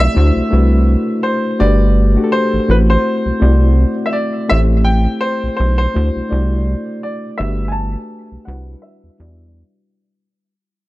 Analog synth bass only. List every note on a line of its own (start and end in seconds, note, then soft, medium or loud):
0.17 0.32 D2 loud
0.36 0.42 C2 soft
0.53 0.96 C2 medium
1.61 2.17 G1 loud
2.54 2.60 A1 medium
2.69 2.97 A1 medium
3.26 3.32 C2 soft
3.42 3.85 C2 medium
4.52 5.07 A1 loud
5.44 5.49 B1 soft
5.60 5.87 B1 medium
5.96 6.11 D2 medium
6.16 6.22 C2 soft
6.32 6.75 C2 medium
7.40 7.96 G1 loud
8.32 8.38 C2 soft
8.48 8.76 C2 loud
9.04 9.10 E2 soft
9.20 9.63 E2 medium